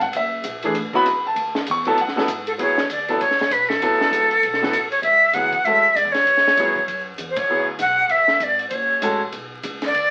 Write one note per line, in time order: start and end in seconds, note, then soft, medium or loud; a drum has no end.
0.00 0.12 G#1 medium
0.00 0.13 F#5 medium
0.00 kick medium
0.00 ride soft
0.13 0.43 F#1 medium
0.13 0.61 E5 medium
0.13 ride medium
0.44 0.74 A#1 loud
0.44 hi-hat pedal medium
0.44 ride medium
0.62 0.74 E3 medium
0.62 0.74 A3 medium
0.62 0.74 D4 medium
0.62 0.75 G#4 medium
0.62 ride soft
0.75 0.92 A1 medium
0.75 ride medium
0.93 1.04 F#3 medium
0.93 1.05 B3 medium
0.93 1.05 E4 medium
0.93 1.05 F#4 medium
0.93 1.23 B5 loud
0.93 kick medium
1.06 1.35 C#2 medium
1.06 hi-hat pedal medium
1.06 ride medium
1.27 1.65 A5 medium
1.36 1.66 D2 medium
1.36 ride medium
1.55 snare soft
1.67 1.97 E2 loud
1.67 hi-hat pedal medium
1.67 ride medium
1.71 1.87 C#6 loud
1.85 1.97 F#3 medium
1.85 1.97 B3 medium
1.85 1.97 E4 medium
1.85 1.97 A4 medium
1.85 1.98 A5 medium
1.85 ride soft
1.98 2.15 F#2 medium
1.98 2.45 F#5 medium
1.98 ride medium
2.08 snare soft
2.16 2.27 F#3 medium
2.16 2.27 B3 medium
2.16 2.27 E4 medium
2.16 2.27 A4 medium
2.16 muted upright bass stroke soft
2.16 snare soft
2.28 2.57 G#2 medium
2.28 hi-hat pedal medium
2.28 ride medium
2.47 2.52 A4 medium
2.47 ride medium
2.58 2.88 E2 medium
2.58 2.75 F#3 medium
2.58 2.75 B3 medium
2.58 2.76 E4 medium
2.58 2.76 G#4 medium
2.58 2.88 C#5 medium
2.58 ride medium
2.78 snare soft
2.90 3.19 D2 medium
2.90 3.19 D5 medium
2.90 hi-hat pedal soft
2.90 ride medium
3.08 3.19 F#3 medium
3.08 3.19 B3 medium
3.08 3.20 E4 medium
3.08 3.20 A4 medium
3.08 ride soft
3.20 3.50 C#2 medium
3.20 3.54 C#5 medium
3.20 ride medium
3.31 snare soft
3.39 snare soft
3.39 ride soft
3.51 3.80 B1 medium
3.51 3.70 B4 medium
3.51 hi-hat pedal medium
3.51 ride medium
3.69 4.91 A4 medium
3.69 snare soft
3.80 3.98 A1 medium
3.80 4.27 F#3 medium
3.80 4.27 B3 medium
3.80 4.27 E4 medium
3.80 4.28 A4 medium
3.80 ride medium
4.00 muted upright bass stroke soft
4.00 snare soft
4.11 4.41 C#2 medium
4.11 hi-hat pedal medium
4.11 ride medium
4.31 ride soft
4.43 4.72 B1 medium
4.43 ride medium
4.54 snare soft
4.61 4.72 F#3 medium
4.61 4.72 B3 medium
4.61 4.73 E4 medium
4.61 4.73 F#4 medium
4.61 snare soft
4.72 5.01 A1 medium
4.72 hi-hat pedal medium
4.72 ride medium
4.91 5.03 C#5 medium
4.91 ride soft
5.02 5.33 C#2 medium
5.02 5.36 E5 loud
5.02 ride medium
5.33 5.63 D2 medium
5.33 5.51 F#3 medium
5.33 5.52 B3 soft
5.33 5.52 E4 soft
5.33 5.52 G#4 medium
5.33 5.66 F#5 medium
5.33 hi-hat pedal medium
5.33 ride medium
5.52 kick medium
5.52 ride soft
5.64 5.94 E2 medium
5.64 5.82 G#3 medium
5.64 5.82 C#4 soft
5.64 5.83 F#4 soft
5.64 5.83 A4 medium
5.64 5.97 E5 loud
5.64 ride medium
5.94 6.05 G#2 medium
5.94 6.14 D5 medium
5.94 hi-hat pedal medium
5.94 ride medium
6.05 6.14 E2 medium
6.12 6.25 C#2 medium
6.12 7.08 C#5 loud
6.12 snare soft
6.12 ride soft
6.26 6.56 A2 medium
6.26 ride medium
6.37 snare soft
6.48 snare soft
6.57 6.86 G2 medium
6.57 6.75 F#3 medium
6.57 6.75 B3 medium
6.57 6.75 E4 medium
6.57 6.75 G#4 medium
6.57 hi-hat pedal medium
6.57 ride medium
6.76 kick soft
6.87 7.17 F#2 medium
6.87 ride medium
7.18 7.48 E2 medium
7.18 hi-hat pedal medium
7.18 ride medium
7.30 7.39 C5 medium
7.36 7.68 C#5 medium
7.36 kick medium
7.36 ride medium
7.48 7.78 D2 medium
7.48 7.66 F#3 medium
7.48 7.66 B3 medium
7.48 7.66 E4 soft
7.48 7.67 G#4 medium
7.79 8.08 B1 medium
7.79 8.12 F#5 medium
7.79 hi-hat pedal medium
7.79 ride medium
8.08 8.39 A1 medium
8.08 8.45 E5 medium
8.08 ride medium
8.28 snare soft
8.40 8.70 G#1 medium
8.40 8.67 D5 medium
8.40 hi-hat pedal soft
8.40 ride medium
8.59 ride soft
8.69 9.01 F#1 medium
8.69 8.76 C5 soft
8.69 ride medium
8.75 9.22 C#5 medium
9.02 9.32 A1 medium
9.02 9.19 G#3 medium
9.02 9.19 C#4 medium
9.02 9.19 F#4 medium
9.02 9.20 A4 medium
9.02 hi-hat pedal medium
9.02 ride medium
9.32 9.63 B1 medium
9.32 ride medium
9.63 9.93 C#2 medium
9.63 hi-hat pedal medium
9.63 ride medium
9.82 snare soft
9.82 ride soft
9.86 10.10 D5 medium
9.94 10.10 D2 medium
9.94 ride medium